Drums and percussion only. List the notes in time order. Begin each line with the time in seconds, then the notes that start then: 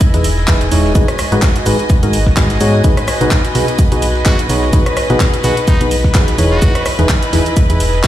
0.01 kick, closed hi-hat, shaker
0.14 closed hi-hat
0.24 open hi-hat, shaker
0.38 snare
0.48 kick, snare, clap, closed hi-hat, shaker
0.61 closed hi-hat
0.72 snare, open hi-hat, shaker
0.85 snare
0.95 kick, closed hi-hat, shaker
1.08 cross-stick, closed hi-hat
1.19 cross-stick, open hi-hat, shaker
1.32 closed hi-hat
1.42 kick, snare, clap, closed hi-hat, shaker
1.56 closed hi-hat
1.66 open hi-hat, shaker
1.79 closed hi-hat
1.90 kick, closed hi-hat, shaker
2.03 closed hi-hat
2.13 open hi-hat, shaker
2.27 kick, snare
2.37 kick, snare, clap, closed hi-hat, shaker
2.50 snare, closed hi-hat
2.61 open hi-hat, shaker
2.84 kick, closed hi-hat, shaker
2.97 cross-stick, closed hi-hat
3.08 cross-stick, open hi-hat, shaker
3.21 closed hi-hat
3.31 kick, snare, clap, closed hi-hat, shaker
3.45 closed hi-hat
3.55 snare, open hi-hat
3.68 closed hi-hat
3.79 kick, closed hi-hat, shaker
3.92 closed hi-hat
4.02 open hi-hat, shaker
4.15 snare
4.25 kick, snare, clap, closed hi-hat, shaker
4.39 closed hi-hat
4.50 snare, open hi-hat, shaker
4.63 snare
4.73 kick, closed hi-hat, shaker
4.86 cross-stick, closed hi-hat
4.97 cross-stick, open hi-hat, shaker
5.10 closed hi-hat
5.20 kick, snare, clap, closed hi-hat, shaker
5.34 closed hi-hat
5.44 open hi-hat, shaker
5.57 closed hi-hat
5.68 kick, closed hi-hat, shaker
5.81 closed hi-hat
5.91 open hi-hat, shaker
6.04 kick, snare
6.14 kick, snare, clap, closed hi-hat, shaker
6.28 snare, closed hi-hat
6.38 open hi-hat, shaker
6.62 kick, closed hi-hat, shaker
6.75 cross-stick, closed hi-hat
6.86 cross-stick, open hi-hat, shaker
6.99 closed hi-hat
7.09 kick, snare, clap, closed hi-hat, shaker
7.23 closed hi-hat
7.33 snare, open hi-hat
7.46 closed hi-hat
7.57 kick, closed hi-hat, shaker
7.70 closed hi-hat
7.80 open hi-hat, shaker
7.93 snare
8.03 kick, snare, clap, closed hi-hat, shaker